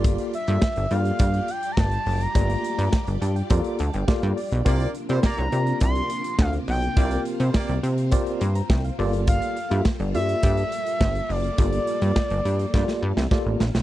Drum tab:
HH |xxxx-xxxxxxx-xox|xxxx-xxxxxxx-xox|xxxx-xxxxxxx-xox|xxxx-xxxxxxx-xox|
SD |----o-------o---|----o-------o---|----o-------o---|----o-------o---|
BD |o---o---o---o---|o---o---o---o---|o---o---o---o---|o---o---o---o---|

HH |xxxx-xxxxxxx-xox|xxxx-xxx--------|
SD |----o-------o---|----o---oo-oo-oo|
BD |o---o---o---o---|o---o---o---o---|